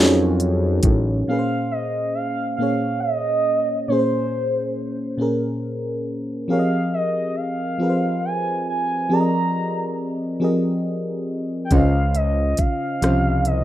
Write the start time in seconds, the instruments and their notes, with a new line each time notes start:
Already playing: fm electric piano F#3 C#4 F#4 A#4, soft synth lead G#5
0.00 analog synth bass F2, fm electric piano D#4 G#4 C#5
0.40 closed hi-hat
0.83 analog synth bass A1, kick, closed hi-hat
1.28 fm electric piano A#2 A#3 C#4 G#4, soft synth lead F5
1.32 fm electric piano B4
1.39 fm electric piano C5
1.71 soft synth lead D#5
2.14 soft synth lead F5
2.56 fm electric piano A#2 A#3, soft synth lead F5
2.61 fm electric piano C#4 G#4 C#5
3.00 soft synth lead D#5
3.88 fm electric piano A#2 A#3 C#4, soft synth lead C5
3.92 fm electric piano G#4 C5
3.99 fm electric piano C5
5.17 fm electric piano A#2 A#3 C#4 G#4
5.22 fm electric piano A#4
6.48 fm electric piano F3 C4 G4 G#4 A#4, soft synth lead F5
6.53 fm electric piano C#5
6.59 fm electric piano D#5
6.94 soft synth lead D#5
7.36 soft synth lead F5
7.78 fm electric piano F3 C4 F4 G#4
7.82 fm electric piano A#4 B4
7.90 fm electric piano C5
8.25 soft synth lead G#5
8.69 soft synth lead G#5
9.09 fm electric piano F3 C4 G4 G#4 A#4, soft synth lead A#5
9.14 fm electric piano D5
9.20 fm electric piano D#5
10.40 fm electric piano F3 C4 G4 G#4 A#4
10.44 fm electric piano D#5
11.65 soft synth lead G5
11.71 analog synth bass C#2, fm electric piano C#3 C#4 F4 C5, soft synth lead F5, kick, closed hi-hat
11.76 fm electric piano D#5
12.15 soft synth lead D#5, closed hi-hat
12.57 analog synth bass C2, soft synth lead F5, kick, closed hi-hat
13.01 analog synth bass C2, fm electric piano F3 C#4 F4 C5, cross-stick, closed hi-hat
13.06 fm electric piano F5
13.45 soft synth lead D#5, closed hi-hat